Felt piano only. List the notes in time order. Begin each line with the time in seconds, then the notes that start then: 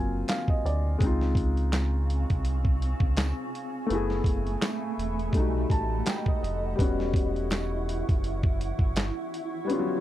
Already playing: F#3 A#3 C4 F4 F5 G#5
0.29 F5
0.50 D#5
0.66 D5
0.99 G#3 C4
1.04 D#4 F4
3.87 A3 B3
3.92 E4 G#4
5.32 G3 A3
5.37 D#4 F#4
5.71 A5
6.08 G5
6.28 D#5
6.43 D#5
6.76 G3 B3
6.81 C#4 F#4
9.65 G3 B3
9.70 C#4 F4
9.79 F#3